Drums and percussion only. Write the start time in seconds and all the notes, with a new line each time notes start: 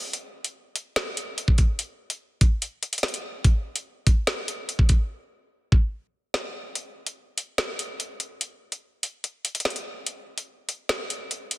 0.13 closed hi-hat
0.44 closed hi-hat
0.76 closed hi-hat
0.96 snare, closed hi-hat
1.17 closed hi-hat
1.38 closed hi-hat
1.48 kick
1.58 kick, closed hi-hat
1.79 closed hi-hat
2.10 closed hi-hat
2.41 kick, closed hi-hat
2.62 closed hi-hat
2.83 closed hi-hat
2.93 closed hi-hat
2.98 closed hi-hat
3.03 snare, closed hi-hat
3.08 closed hi-hat
3.14 closed hi-hat
3.44 kick, closed hi-hat
3.76 closed hi-hat
4.07 kick, closed hi-hat
4.27 snare, closed hi-hat
4.48 closed hi-hat
4.69 closed hi-hat
4.79 kick
4.89 kick, closed hi-hat
5.72 kick
6.34 snare
6.75 closed hi-hat
7.07 closed hi-hat
7.38 closed hi-hat
7.58 snare, closed hi-hat
7.79 closed hi-hat
8.00 closed hi-hat
8.20 closed hi-hat
8.41 closed hi-hat
8.72 closed hi-hat
9.03 closed hi-hat
9.24 closed hi-hat
9.45 closed hi-hat
9.55 closed hi-hat
9.60 closed hi-hat
9.65 snare, closed hi-hat
9.70 closed hi-hat
9.76 closed hi-hat
10.06 closed hi-hat
10.38 closed hi-hat
10.69 closed hi-hat
10.89 snare, closed hi-hat
11.10 closed hi-hat
11.31 closed hi-hat
11.51 closed hi-hat